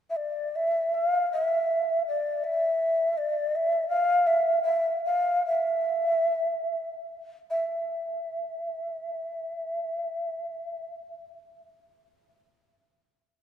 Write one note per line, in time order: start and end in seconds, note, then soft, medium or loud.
0.10 0.18 E5 soft
0.16 0.57 D5 medium
0.56 0.96 E5 medium
0.94 1.31 F5 medium
1.32 2.03 E5 medium
2.08 2.45 D5 medium
2.44 3.19 E5 medium
3.17 3.57 D5 medium
3.55 3.88 E5 medium
3.89 4.28 F5 medium
4.27 4.62 E5 medium
4.63 5.00 E5 medium
5.05 5.43 F5 medium
5.46 6.87 E5 medium
7.50 10.94 E5 medium